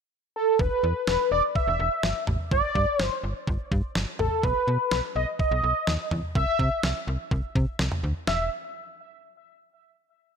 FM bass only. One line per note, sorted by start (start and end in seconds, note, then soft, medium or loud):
0.59 0.70 E1 loud
0.83 0.94 E2 loud
1.07 1.18 E1 loud
1.31 1.42 E1 medium
1.68 1.78 E1 loud
1.79 1.90 E1 loud
2.03 2.14 G1 medium
2.28 2.38 A1 medium
2.51 2.62 G1 loud
2.75 2.86 G2 medium
3.00 3.10 G1 loud
3.23 3.34 G1 medium
3.47 3.58 G1 loud
3.72 3.82 G2 loud
3.96 4.06 G1 loud
4.20 4.30 A1 medium
4.43 4.54 B1 loud
4.68 4.78 B2 loud
4.92 5.02 B1 loud
5.16 5.26 B1 loud
5.51 5.62 B1 loud
5.63 5.74 B1 medium
5.88 5.98 D#2 medium
6.11 6.22 E2 loud
6.35 6.46 C2 loud
6.59 6.70 C3 loud
6.83 6.94 C2 loud
7.07 7.18 C2 loud
7.31 7.42 C2 loud
7.56 7.66 C3 loud
7.79 7.90 C2 loud
8.03 8.14 D2 medium
8.27 8.50 E1 loud